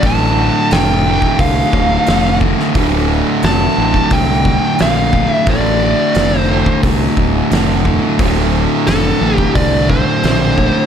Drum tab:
HH |o---o---o---o---|o---o---o---o---|o---o---o---o---|o---o---o---o---|
SD |----o-------o--o|----o-------o---|----o-------o---|----o-------o---|
BD |o------oo-o---o-|o------oo-o---o-|o------oo-o---o-|o------oo-o---o-|